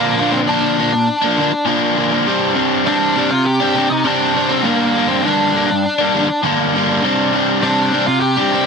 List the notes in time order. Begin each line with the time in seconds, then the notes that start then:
Already playing: A#2 D3 F3 A#3 D4 A#4
0.17 D3 F3 A#3
0.21 D4
0.31 C4 C5
0.47 A#2 D3 F3 A#3 D4 D5
0.51 D4
0.78 D3 F3 A#3 D4
0.93 muted overdriven electric guitar stroke
1.22 F3 A#3 D4
1.37 D3 F3 A#3 D4
1.52 muted overdriven electric guitar stroke
1.65 A#2 D3 F3 A#3 D4
1.96 D3 F3 A#3 D4
2.11 F3 A#3 D4
2.26 C3 G3 C4 D4
2.55 C3 G3 C4 D4
2.85 C3 G3 C4 D4 D5
3.15 C3 G3 C4 D4
3.31 F4 F5, muted overdriven electric guitar stroke
3.45 G4 G5
3.60 G3 C4 D4
3.75 C3 G3 C4
3.79 D4
3.90 D#4 D#5, muted overdriven electric guitar stroke
4.04 C3 G3 C4 D4 D5
4.34 C3 G3 C4 D4
4.49 G3 C4 D4 C5
4.62 G2 D3 G3 A#3 A#4
4.67 D4
4.95 D3 G3 A#3 D4
5.08 C4 C5
5.23 G2 D3 G3 A#3 D4 D5
5.27 D4
5.54 D3 G3 A#3 D4
5.71 muted overdriven electric guitar stroke
5.99 G3 A#3 D4
6.13 D3 G3 A#3 D4
6.29 muted overdriven electric guitar stroke
6.43 G2 D3 G3 A#3 D4
6.74 D3 G3 A#3 D4
6.89 G3 A#3 D4
7.02 C3 G3 C4 D4
7.32 C3 G3 C4 D4
7.61 C3 G3 C4 D4 D5
7.92 C3 G3 C4 D4
8.07 F4 F5, muted overdriven electric guitar stroke
8.21 G4 G5
8.37 G3 C4 D4
8.52 C3 G3 C4 D4